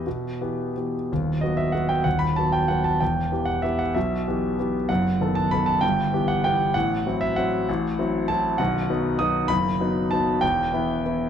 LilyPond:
<<
  \new Staff \with { instrumentName = "Grand piano" } { \time 3/4 \key e \minor \tempo 4 = 192 e''2~ e''8 r8 | r4 dis''8 e''8 fis''8 g''8 | fis''8 b''8 a''8 g''8 fis''8 a''8 | g''4. fis''8 e''8 fis''8 |
e''2~ e''8 r8 | fis''4. a''8 b''8 a''8 | g''4. fis''8 g''4 | fis''4. e''8 fis''4~ |
fis''2 a''4 | fis''2 dis'''4 | b''2 a''4 | g''2. | }
  \new Staff \with { instrumentName = "Grand piano" } { \time 3/4 \key e \minor b,4 <e b g'>4 <e b g'>4 | <dis,, dis,>4 <fis b fis'>4 <fis b fis'>4 | <dis,, dis,>4 <fis b fis'>4 <fis b fis'>4 | <e,, e,>4 <e b g'>4 <e b g'>4 |
<b,, b,>4 <e b g'>4 <e b g'>4 | <fis,, fis,>4 <dis b a'>4 <dis b a'>4 | <g,, g,>4 <e b g'>4 <e b g'>4 | <a,, a,>4 <fis c' e'>4 <fis c' e'>4 |
<a,, a,>4 <fis c' e'>4 <fis c' e'>4 | <b,,, b,,>4 <fis b dis'>4 <fis b dis'>4 | <fis,, fis,>4 <fis b dis'>4 <fis b dis'>4 | <e,, e,>4 <e b e'>4 <e b e'>4 | }
>>